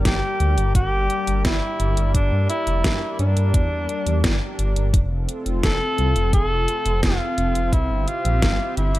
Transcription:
Already playing: analog synth pad G3 G4 A#4 D5
0.05 detuned saw bass G1, tenor saxophone G4, kick, snare, closed hi-hat
0.40 detuned saw bass D2, closed hi-hat
0.58 detuned saw bass G1, closed hi-hat
0.75 detuned saw bass G1, tenor saxophone G4, kick, closed hi-hat
0.92 detuned saw bass G1
1.10 closed hi-hat
1.27 detuned saw bass G1, closed hi-hat
1.45 detuned saw bass G1, tenor saxophone E4, kick, snare, closed hi-hat
1.80 detuned saw bass G1, closed hi-hat
1.97 detuned saw bass G1, closed hi-hat
2.15 detuned saw bass G1, tenor saxophone D4, kick, closed hi-hat
2.32 detuned saw bass G2
2.50 tenor saxophone E4, closed hi-hat
2.67 detuned saw bass F1, closed hi-hat
2.84 detuned saw bass G2, kick, snare, closed hi-hat
3.19 detuned saw bass G2, tenor saxophone D4, closed hi-hat
3.37 detuned saw bass G2, closed hi-hat
3.54 detuned saw bass E2, kick, closed hi-hat
3.72 detuned saw bass E2
3.89 closed hi-hat
4.07 detuned saw bass E2, closed hi-hat
4.24 detuned saw bass G1, kick, snare, closed hi-hat
4.59 detuned saw bass G1, closed hi-hat
4.76 detuned saw bass G1, closed hi-hat
4.94 detuned saw bass F1, analog synth pad C4 F4 A4, kick, closed hi-hat
5.11 detuned saw bass F1
5.29 closed hi-hat
5.46 detuned saw bass F1, closed hi-hat
5.63 detuned saw bass F1, tenor saxophone A4, kick, snare, closed hi-hat
5.98 detuned saw bass C2, closed hi-hat
6.16 detuned saw bass F1, closed hi-hat
6.33 detuned saw bass F1, tenor saxophone A4, kick, closed hi-hat
6.51 detuned saw bass F1
6.68 closed hi-hat
6.86 detuned saw bass F1, closed hi-hat
7.03 detuned saw bass F1, tenor saxophone F4, kick, snare, closed hi-hat
7.38 detuned saw bass F1, closed hi-hat
7.55 detuned saw bass F1, closed hi-hat
7.73 detuned saw bass C2, tenor saxophone E4, analog synth pad G4 E5, kick, closed hi-hat
7.90 detuned saw bass G1
8.08 tenor saxophone F4, closed hi-hat
8.25 detuned saw bass A#1, closed hi-hat
8.42 detuned saw bass G1, kick, snare, closed hi-hat
8.77 detuned saw bass G1, tenor saxophone E4, closed hi-hat
8.95 detuned saw bass G1, closed hi-hat

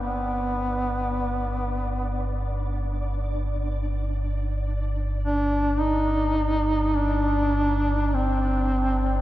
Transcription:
Already playing: synth drone G1 G2, synth texture D4 D5
0.02 duduk B3
5.24 duduk D4
5.81 duduk D#4
6.97 duduk D4
8.14 duduk C4

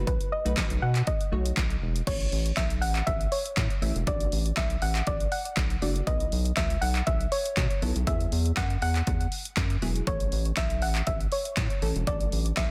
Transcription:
Already playing: synth stab A3 D#4 F#4 B4
0.07 analog synth bass B1, synth pluck B4, kick, closed hi-hat
0.21 closed hi-hat
0.32 synth pluck D#5
0.45 analog synth bass B1, synth stab A3 D#4 F#4 B4, closed hi-hat
0.57 kick, snare, clap, closed hi-hat
0.70 analog synth bass B1, closed hi-hat
0.82 analog synth bass B2, synth pluck F#5
0.95 clap, closed hi-hat
1.07 synth pluck D#5, kick, closed hi-hat
1.21 closed hi-hat
1.32 analog synth bass B1, synth stab A3 D#4 F#4 C#5
1.46 closed hi-hat
1.57 analog synth bass B1, kick, snare, clap, closed hi-hat
1.70 closed hi-hat
1.82 analog synth bass E1
1.96 closed hi-hat
2.07 analog synth bass A1, synth stab A3 C#4 E4 C#5, synth pluck C#5, kick, closed hi-hat, crash
2.20 closed hi-hat
2.32 analog synth bass A1, open hi-hat
2.46 closed hi-hat
2.57 analog synth bass B1, synth pluck E5, kick, snare, clap, closed hi-hat
2.70 closed hi-hat
2.81 analog synth bass A1, synth pluck F#5, open hi-hat
2.96 clap, closed hi-hat
3.07 analog synth bass A1, synth pluck E5, kick, closed hi-hat
3.21 closed hi-hat
3.32 synth pluck C#5, open hi-hat
3.46 closed hi-hat
3.57 analog synth bass A2, kick, snare, clap, closed hi-hat
3.70 closed hi-hat
3.82 analog synth bass A1, synth stab A3 C#4 E4 E5, open hi-hat
3.95 analog synth bass E1, closed hi-hat
4.07 analog synth bass A1, synth stab A3 D4 F#4 D5, synth pluck D5, kick, closed hi-hat
4.20 closed hi-hat
4.32 analog synth bass A1, open hi-hat
4.46 closed hi-hat
4.57 analog synth bass B1, synth pluck E5, kick, snare, clap, closed hi-hat
4.70 closed hi-hat
4.82 analog synth bass A1, synth pluck F#5, open hi-hat
4.95 clap, closed hi-hat
5.07 analog synth bass A1, synth pluck D5, kick, closed hi-hat
5.20 closed hi-hat
5.32 synth pluck F#5, open hi-hat
5.45 closed hi-hat
5.57 analog synth bass B1, kick, snare, clap, closed hi-hat
5.70 closed hi-hat
5.82 analog synth bass F#1, synth stab A3 D4 F#4 D5, open hi-hat
5.96 closed hi-hat
6.07 analog synth bass B1, synth stab F#3 B3 E4 B4, synth pluck D#5, kick, closed hi-hat
6.20 closed hi-hat
6.32 analog synth bass B1, open hi-hat
6.45 closed hi-hat
6.57 analog synth bass C#2, synth pluck E5, kick, snare, clap, closed hi-hat
6.70 closed hi-hat
6.81 analog synth bass B1, synth pluck F#5, open hi-hat
6.95 clap, closed hi-hat
7.07 analog synth bass B1, synth pluck E5, kick, closed hi-hat
7.21 closed hi-hat
7.32 synth pluck C#5, open hi-hat
7.46 closed hi-hat
7.57 analog synth bass B2, kick, snare, clap, closed hi-hat
7.71 closed hi-hat
7.82 analog synth bass B1, synth stab F#3 B3 E4 A4, open hi-hat
7.96 analog synth bass B1, closed hi-hat
8.07 analog synth bass E2, synth stab F#3 B3 E4 G#4, synth pluck E5, kick, closed hi-hat
8.20 closed hi-hat
8.32 analog synth bass E2, open hi-hat
8.46 closed hi-hat
8.57 analog synth bass F#2, synth pluck F#5, kick, snare, clap, closed hi-hat
8.70 closed hi-hat
8.82 analog synth bass E2, synth pluck F#5, open hi-hat
8.96 clap, closed hi-hat
9.07 analog synth bass E2, kick, closed hi-hat
9.21 closed hi-hat
9.32 open hi-hat
9.45 closed hi-hat
9.57 analog synth bass F#2, kick, snare, clap, closed hi-hat
9.70 closed hi-hat
9.82 analog synth bass E1, synth stab F#3 B3 E4 G#4, open hi-hat
9.96 closed hi-hat
10.07 analog synth bass A1, synth stab E3 A3 C#4 A4, synth pluck C#5, kick, closed hi-hat
10.20 closed hi-hat
10.32 analog synth bass A1, open hi-hat
10.45 closed hi-hat
10.57 analog synth bass B1, synth pluck E5, kick, snare, clap, closed hi-hat
10.70 closed hi-hat
10.82 analog synth bass A1, synth pluck F#5, open hi-hat
10.95 clap, closed hi-hat
11.07 analog synth bass A1, synth pluck E5, kick, closed hi-hat
11.20 closed hi-hat
11.32 synth pluck C#5, open hi-hat
11.45 closed hi-hat
11.57 analog synth bass A2, kick, snare, clap, closed hi-hat
11.70 closed hi-hat
11.82 analog synth bass A1, synth stab E3 A3 C#4 A4, open hi-hat
11.95 analog synth bass E1, closed hi-hat
12.07 analog synth bass A1, synth stab F#3 A3 D4 A4, synth pluck D5, kick, closed hi-hat
12.21 closed hi-hat
12.32 analog synth bass A1, open hi-hat
12.46 closed hi-hat
12.57 analog synth bass B1, synth pluck E5, kick, snare, clap, closed hi-hat

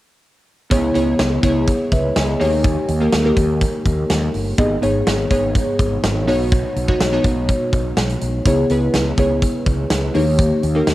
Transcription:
0.70 fretless electric bass C#2, synth keys C#3 B3 E4 G#4 C#5, kick, closed hi-hat
0.94 fretless electric bass C#2, synth keys B3 E4 G#4 C#5, closed hi-hat
1.19 fretless electric bass C#2, snare, closed hi-hat
1.43 fretless electric bass C#2, synth keys B3 E4 G#4 C#5, kick, closed hi-hat
1.68 kick, closed hi-hat
1.92 fretless electric bass C#2, synth keys B4 E5, kick, closed hi-hat
2.16 fretless electric bass C#2, synth keys D#5 G#5, snare, closed hi-hat
2.40 fretless electric bass D#2, synth keys D#3 A#3 D#4 G4 C#5, open hi-hat
2.65 kick, closed hi-hat
2.88 fretless electric bass D#2, closed hi-hat
3.00 synth keys A#3 D#4 G4 A#4
3.13 fretless electric bass D#2, snare, closed hi-hat
3.24 synth keys A#3 D#4 G4 A#4
3.37 fretless electric bass D#2, kick, closed hi-hat
3.61 kick, closed hi-hat
3.86 fretless electric bass D#2, kick, closed hi-hat
4.10 fretless electric bass D#2, snare, closed hi-hat
4.34 fretless electric bass G1, open hi-hat
4.58 fretless electric bass G#1, synth keys G#2 B3 D#4 G#4 D#5, kick, closed hi-hat
4.82 fretless electric bass G#1, synth keys B3 D#4 G#4 C#5, closed hi-hat
5.07 fretless electric bass G#1, snare, closed hi-hat
5.30 fretless electric bass G#1, synth keys B3 D#4 G#4 C#5, kick, closed hi-hat
5.55 kick, closed hi-hat
5.79 fretless electric bass G#1, kick, closed hi-hat
6.04 fretless electric bass G#1, snare, closed hi-hat
6.27 fretless electric bass B1, synth keys B2 B3 D#4 F#4 C#5, open hi-hat
6.52 kick, closed hi-hat
6.76 fretless electric bass B1, closed hi-hat
6.88 synth keys B3 D#4 F#4 C#5, kick
7.00 fretless electric bass B1, snare, closed hi-hat
7.13 synth keys B3 D#4 F#4 C#5
7.24 fretless electric bass B1, kick, closed hi-hat
7.49 kick, closed hi-hat
7.73 fretless electric bass B1, kick, closed hi-hat
7.97 fretless electric bass B1, snare, closed hi-hat
8.09 closed hi-hat
8.21 fretless electric bass B1, closed hi-hat
8.46 fretless electric bass C#2, synth keys C#3 B3 E4 G#4 C#5, kick, closed hi-hat
8.70 fretless electric bass C#2, synth keys B3 E4 G#4 B4, closed hi-hat
8.94 fretless electric bass C#2, snare, closed hi-hat
9.18 fretless electric bass C#2, synth keys B3 E4 G#4 C#5, kick, closed hi-hat
9.42 kick, closed hi-hat
9.66 fretless electric bass C#2, kick, closed hi-hat
9.90 fretless electric bass C#2, snare, closed hi-hat
10.14 fretless electric bass D#2, synth keys D#3 A#3 D#4 G4 C#5, open hi-hat
10.39 kick, closed hi-hat
10.63 fretless electric bass D#2, closed hi-hat
10.75 synth keys A#3 D#4 G4 A#4
10.87 fretless electric bass D#2, snare, closed hi-hat

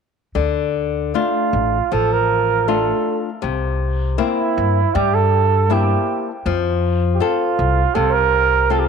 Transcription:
0.35 upright bass D2, nylon-string guitar D3
1.14 nylon-string guitar A3 D4 F4, flugelhorn F4
1.53 upright bass A1
1.92 upright bass A1, nylon-string guitar F3, flugelhorn A4
2.13 flugelhorn A#4
2.68 nylon-string guitar A3 D4 F4, flugelhorn A4
3.42 upright bass C2, nylon-string guitar C3
4.18 nylon-string guitar A#3 C4 E4, flugelhorn E4
4.58 upright bass G2
4.95 upright bass G2, nylon-string guitar G3, flugelhorn G4
5.14 flugelhorn A4
5.70 nylon-string guitar A#3 C4 E4, flugelhorn G4
6.46 upright bass F2, nylon-string guitar F3
7.15 flugelhorn G4
7.20 nylon-string guitar C4 F4 A4, flugelhorn F4
7.59 upright bass C2
7.95 upright bass C2, nylon-string guitar C3, flugelhorn A4
8.10 flugelhorn A#4 C5
8.70 nylon-string guitar C4 F4 A4, flugelhorn A4
8.79 flugelhorn G4
8.85 flugelhorn A4

